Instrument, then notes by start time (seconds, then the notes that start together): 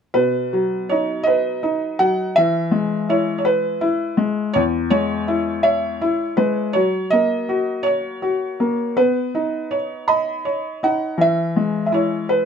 felt piano
0.14 B2 B4
0.53 F#3
0.89 D#4 C#5
1.23 B4 D#5
1.63 D#4
1.99 F#3 F#5
2.36 E3 E5
2.71 G#3
3.09 E4 C#5
3.38 C#5
3.45 B4
3.81 E4
4.17 G#3
4.53 E2 C#5
4.90 G#3 C#5
5.28 E4
5.63 C#5 E5
6.01 E4
6.37 G#3 B4
6.73 F#3 C#5
7.10 A#3 D#5
7.49 F#4
7.83 C#5
8.22 F#4
8.60 A#3
8.97 B3 B4
9.35 D#4
9.71 C#5
10.08 D#5 B5
10.45 C#5
10.83 D#4 F#5
11.18 E3 E5
11.56 G#3
11.86 E5
11.92 E4 C#5
12.29 B4